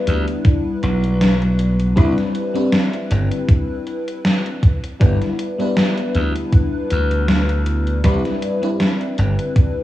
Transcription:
0.00 1.96 G3 medium
0.00 1.99 B3 medium
0.00 1.96 D4 medium
0.00 1.97 E4 medium
0.00 1.97 B4 medium
0.07 0.25 D2 loud
0.07 closed hi-hat medium
0.28 closed hi-hat soft
0.45 kick loud
0.45 closed hi-hat medium
0.83 1.93 B1 medium
0.83 snare soft
0.83 closed hi-hat medium
1.04 closed hi-hat medium
1.21 snare loud
1.21 closed hi-hat medium
1.42 closed hi-hat soft
1.59 closed hi-hat medium
1.80 closed hi-hat medium
1.96 2.15 C2 loud
1.96 2.50 G3 medium
1.96 2.50 C4 medium
1.96 2.50 D4 medium
1.96 2.51 E4 medium
1.96 2.51 B4 loud
1.96 kick loud
1.96 closed hi-hat medium
2.18 snare soft
2.18 closed hi-hat soft
2.35 closed hi-hat medium
2.54 4.60 G3 medium
2.54 4.60 C4 medium
2.54 4.61 D4 medium
2.54 4.61 E4 medium
2.54 4.61 B4 medium
2.54 closed hi-hat soft
2.73 snare loud
2.73 closed hi-hat medium
2.94 closed hi-hat soft
3.11 3.29 G1 loud
3.11 closed hi-hat medium
3.32 closed hi-hat soft
3.49 kick loud
3.49 closed hi-hat medium
3.87 closed hi-hat medium
4.08 closed hi-hat medium
4.25 snare loud
4.25 closed hi-hat medium
4.46 closed hi-hat soft
4.63 kick loud
4.63 closed hi-hat medium
4.83 closed hi-hat soft
4.99 5.18 G1 loud
4.99 5.54 G3 medium
4.99 5.54 B3 medium
4.99 5.54 D4 medium
4.99 5.54 E4 medium
4.99 5.55 B4 medium
4.99 kick loud
4.99 closed hi-hat medium
5.21 snare soft
5.21 closed hi-hat soft
5.39 closed hi-hat medium
5.58 8.00 G3 medium
5.58 8.00 B3 medium
5.58 8.01 D4 medium
5.58 8.01 E4 medium
5.58 8.01 B4 loud
5.58 closed hi-hat soft
5.76 snare loud
5.76 closed hi-hat medium
5.97 closed hi-hat soft
6.14 6.32 D2 loud
6.14 closed hi-hat medium
6.35 closed hi-hat soft
6.52 kick loud
6.52 closed hi-hat medium
6.90 8.01 D2 medium
6.90 closed hi-hat medium
7.11 closed hi-hat soft
7.28 snare loud
7.28 closed hi-hat medium
7.49 closed hi-hat soft
7.66 closed hi-hat medium
7.87 closed hi-hat soft
8.04 8.22 C2 loud
8.04 8.58 G3 medium
8.04 8.58 C4 medium
8.04 8.58 D4 medium
8.04 8.59 E4 medium
8.04 8.59 B4 loud
8.04 kick loud
8.04 closed hi-hat medium
8.25 snare soft
8.25 closed hi-hat soft
8.42 closed hi-hat medium
8.62 9.83 G3 medium
8.62 9.83 C4 medium
8.62 9.83 D4 medium
8.62 9.83 E4 medium
8.62 9.83 B4 medium
8.62 closed hi-hat soft
8.80 snare loud
8.80 closed hi-hat medium
9.01 closed hi-hat soft
9.18 9.36 G1 loud
9.18 closed hi-hat medium
9.39 closed hi-hat soft
9.56 kick loud
9.56 closed hi-hat medium

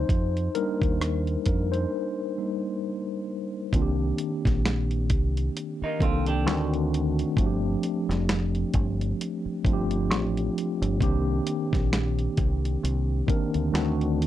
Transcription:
0.00 0.11 F#3 soft
0.00 0.11 C4 soft
0.00 0.52 D#4 medium
0.00 0.51 C5 medium
0.09 0.47 F2 medium
0.09 kick loud
0.09 closed hi-hat medium
0.37 closed hi-hat soft
0.55 2.37 G3 medium
0.55 2.37 A#3 soft
0.55 1.43 D4 medium
0.55 1.73 D#4 medium
0.55 1.42 A#4 medium
0.55 closed hi-hat medium
0.82 1.36 D#2 medium
0.82 kick medium
0.82 closed hi-hat soft
1.01 cross-stick loud
1.01 closed hi-hat medium
1.27 closed hi-hat soft
1.46 1.85 F2 medium
1.46 1.72 D4 soft
1.46 1.73 A#4 medium
1.46 kick medium
1.46 closed hi-hat medium
1.72 2.37 D#4 soft
1.72 3.24 C5 medium
1.72 closed hi-hat soft
2.38 2.79 G3 soft
2.38 2.79 A#3 soft
2.38 2.79 D#4 soft
3.72 4.11 C2 medium
3.72 5.32 D#3 medium
3.72 5.32 A#3 medium
3.72 5.33 C4 medium
3.72 5.33 D4 medium
3.72 3.82 F4 medium
3.72 kick loud
3.72 closed hi-hat medium
3.82 5.37 G4 medium
4.18 closed hi-hat medium
4.45 5.11 A#1 medium
4.45 kick medium
4.45 snare soft
4.45 closed hi-hat soft
4.66 snare loud
4.66 closed hi-hat medium
4.91 closed hi-hat soft
5.10 5.48 C2 medium
5.10 kick medium
5.10 closed hi-hat medium
5.37 closed hi-hat soft
5.57 closed hi-hat medium
5.82 6.01 A#3 medium
5.82 6.01 D#4 medium
5.82 muted fingered electric bass stroke soft
5.99 6.46 C2 medium
5.99 6.44 D#3 medium
5.99 6.46 A#3 medium
5.99 6.45 C4 medium
5.99 6.46 D4 medium
5.99 6.26 F4 medium
5.99 6.47 A4 medium
5.99 kick medium
5.99 closed hi-hat medium
6.03 6.27 C4 medium
6.26 6.71 D4 medium
6.26 6.70 G4 medium
6.26 closed hi-hat soft
6.46 7.22 D2 medium
6.46 7.26 D#3 loud
6.46 7.26 A3 medium
6.46 7.26 C4 medium
6.46 7.27 D4 medium
6.46 7.27 F#4 loud
6.46 snare loud
6.46 closed hi-hat medium
6.74 closed hi-hat soft
6.94 closed hi-hat medium
7.19 closed hi-hat soft
7.36 7.75 G1 loud
7.36 8.96 F3 medium
7.36 8.96 A3 medium
7.36 8.97 C4 medium
7.36 8.97 D4 medium
7.36 7.46 F#4 medium
7.36 kick loud
7.36 closed hi-hat medium
7.46 9.01 G4 medium
7.83 closed hi-hat medium
8.09 8.63 F1 medium
8.09 snare soft
8.09 closed hi-hat soft
8.29 snare loud
8.29 closed hi-hat medium
8.55 closed hi-hat soft
8.74 9.12 G1 medium
8.74 kick medium
8.74 closed hi-hat medium
9.01 closed hi-hat soft
9.21 closed hi-hat medium
9.46 muted fingered electric bass stroke soft
9.64 10.10 G1 medium
9.64 10.84 F3 medium
9.64 10.85 A3 medium
9.64 10.85 C4 medium
9.64 10.85 D4 medium
9.64 9.73 F4 medium
9.64 kick loud
9.64 closed hi-hat medium
9.73 10.89 G4 loud
9.91 closed hi-hat medium
10.10 10.48 A1 medium
10.10 snare loud
10.10 closed hi-hat medium
10.37 closed hi-hat soft
10.58 closed hi-hat medium
10.82 10.98 G1 medium
10.82 closed hi-hat medium
11.00 11.39 C2 loud
11.00 12.60 D#3 medium
11.00 12.60 A#3 medium
11.00 12.60 C4 medium
11.00 12.61 D4 medium
11.00 12.61 G4 loud
11.00 kick loud
11.00 closed hi-hat medium
11.47 closed hi-hat medium
11.73 12.27 A#1 medium
11.73 kick medium
11.73 snare soft
11.73 closed hi-hat soft
11.93 snare loud
11.93 closed hi-hat medium
12.19 closed hi-hat soft
12.37 12.76 C2 medium
12.37 kick medium
12.37 closed hi-hat medium
12.65 closed hi-hat soft
12.84 13.21 C2 loud
12.84 closed hi-hat medium
13.27 13.71 D#3 medium
13.27 13.73 A#3 medium
13.27 13.72 C4 medium
13.27 13.73 D4 medium
13.27 13.74 A#4 medium
13.27 kick loud
13.27 closed hi-hat medium
13.54 13.71 D2 medium
13.54 closed hi-hat soft
13.72 14.27 D2 medium
13.72 14.27 D#3 medium
13.72 14.27 A3 medium
13.72 14.27 C4 medium
13.72 14.27 D4 medium
13.72 14.27 F#4 loud
13.72 snare loud
13.72 closed hi-hat medium
14.01 closed hi-hat soft
14.22 closed hi-hat medium

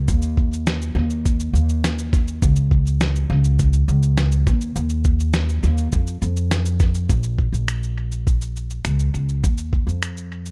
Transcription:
0.08 0.92 D#2 loud
0.08 kick loud
0.08 shaker medium
0.22 shaker medium
0.37 kick medium
0.53 shaker soft
0.67 snare loud
0.67 shaker medium
0.82 shaker soft
0.95 1.50 D#2 loud
1.10 shaker soft
1.25 kick medium
1.25 shaker medium
1.40 shaker medium
1.53 2.38 D#2 medium
1.53 shaker soft
1.69 shaker soft
1.84 snare loud
1.84 shaker medium
1.99 shaker medium
2.13 kick loud
2.13 shaker medium
2.28 shaker soft
2.42 3.26 C#2 loud
2.42 kick loud
2.42 shaker medium
2.56 shaker medium
2.71 kick medium
2.87 shaker soft
3.01 snare loud
3.01 shaker medium
3.16 shaker soft
3.30 3.84 C#2 loud
3.44 shaker medium
3.59 kick medium
3.59 shaker medium
3.73 shaker soft
3.88 4.43 C#2 loud
3.88 shaker soft
4.03 shaker soft
4.17 snare loud
4.17 shaker medium
4.32 shaker medium
4.47 4.74 D#2 medium
4.47 kick loud
4.47 shaker medium
4.61 shaker soft
4.76 5.59 D#2 loud
4.76 shaker medium
4.90 shaker medium
5.04 kick medium
5.04 shaker soft
5.20 shaker medium
5.33 snare loud
5.33 shaker medium
5.49 shaker soft
5.63 5.90 D#2 loud
5.63 shaker soft
5.78 shaker medium
5.92 6.20 F2 medium
5.92 kick medium
5.92 shaker medium
6.07 shaker medium
6.22 7.06 F2 medium
6.22 shaker medium
6.37 shaker medium
6.51 snare loud
6.51 shaker medium
6.66 shaker medium
6.80 kick medium
6.80 snare soft
6.80 shaker medium
6.94 shaker soft
7.09 7.50 A#1 medium
7.09 kick medium
7.09 shaker medium
7.23 shaker soft
7.39 kick medium
7.53 8.81 A#1 medium
7.53 shaker soft
7.68 finger snap loud
7.68 shaker medium
7.83 shaker soft
8.12 shaker soft
8.27 kick medium
8.27 shaker medium
8.41 shaker soft
8.56 shaker soft
8.70 shaker soft
8.85 9.12 C#2 medium
8.85 finger snap medium
8.85 shaker medium
8.99 shaker soft
9.14 9.41 C#2 medium
9.14 shaker soft
9.29 shaker soft
9.44 9.84 D#2 medium
9.44 kick loud
9.44 shaker medium
9.58 shaker medium
9.73 kick medium
9.87 10.51 F2 medium
9.87 shaker soft
10.02 finger snap loud
10.02 shaker medium
10.17 shaker soft
10.46 shaker soft

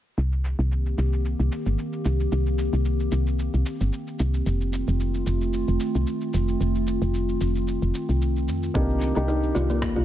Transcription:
0.18 0.55 C2 medium
0.18 4.43 D#3 medium
0.18 4.43 A#3 medium
0.18 10.05 C4 medium
0.18 4.43 G4 medium
0.18 shaker soft
0.32 shaker soft
0.44 shaker medium
0.59 0.94 C2 medium
0.59 shaker soft
0.71 shaker soft
0.86 shaker soft
0.98 1.35 C2 medium
0.98 shaker medium
1.13 shaker soft
1.25 shaker soft
1.40 1.50 C2 medium
1.40 shaker soft
1.52 shaker medium
1.66 1.76 G1 medium
1.66 shaker soft
1.78 shaker soft
1.93 shaker soft
2.05 2.28 C2 medium
2.05 shaker medium
2.20 shaker soft
2.32 2.69 C2 medium
2.32 shaker soft
2.46 shaker soft
2.59 shaker medium
2.73 3.09 C2 medium
2.73 shaker soft
2.85 shaker soft
3.00 shaker soft
3.12 3.49 C2 medium
3.12 shaker medium
3.27 shaker soft
3.39 shaker soft
3.54 3.64 C2 medium
3.54 shaker soft
3.66 shaker medium
3.81 3.91 G1 medium
3.81 shaker soft
3.93 shaker soft
4.07 shaker soft
4.19 4.42 C2 medium
4.19 shaker medium
4.34 shaker soft
4.46 4.83 F1 medium
4.46 10.05 D#3 medium
4.46 8.71 A3 medium
4.46 8.71 F4 medium
4.46 shaker soft
4.61 shaker soft
4.73 shaker medium
4.88 5.23 F1 medium
4.88 shaker soft
5.00 shaker soft
5.14 shaker soft
5.27 5.64 F1 medium
5.27 shaker medium
5.41 shaker soft
5.53 shaker soft
5.68 5.78 F1 medium
5.68 shaker soft
5.80 shaker medium
5.95 6.05 C2 medium
5.95 shaker soft
6.07 shaker soft
6.21 shaker soft
6.34 6.56 F1 medium
6.34 shaker medium
6.48 shaker soft
6.61 6.98 F1 medium
6.61 shaker soft
6.75 shaker soft
6.87 shaker medium
7.02 7.37 F1 loud
7.02 shaker soft
7.14 shaker soft
7.29 shaker soft
7.41 7.78 F1 medium
7.41 shaker medium
7.55 shaker soft
7.68 shaker soft
7.82 7.92 F1 medium
7.82 shaker soft
7.95 shaker medium
8.09 8.50 C2 medium
8.09 shaker soft
8.22 shaker soft
8.36 shaker soft
8.48 8.70 F2 medium
8.48 shaker medium
8.63 shaker soft
8.74 9.12 C2 medium
8.74 9.12 A#3 medium
8.74 10.05 A#3 medium
8.74 9.27 C4 medium
8.74 9.13 D4 medium
8.74 9.13 D#4 medium
8.74 10.05 G4 medium
8.74 9.13 G4 medium
8.74 kick loud
8.74 shaker soft
8.90 shaker soft
9.01 shaker medium
9.15 9.52 C2 medium
9.15 9.26 A#3 medium
9.15 9.26 D4 medium
9.15 9.26 D#4 medium
9.15 9.27 G4 medium
9.15 shaker soft
9.28 9.37 D#4 medium
9.28 shaker soft
9.43 shaker soft
9.55 9.93 C2 medium
9.55 9.69 F4 medium
9.55 shaker medium
9.70 9.77 A#3 medium
9.70 shaker soft
9.82 9.95 A#3 medium
9.82 kick loud
9.82 cross-stick medium
9.82 shaker soft
9.96 10.05 C2 medium
9.96 10.05 F4 medium
9.96 shaker soft

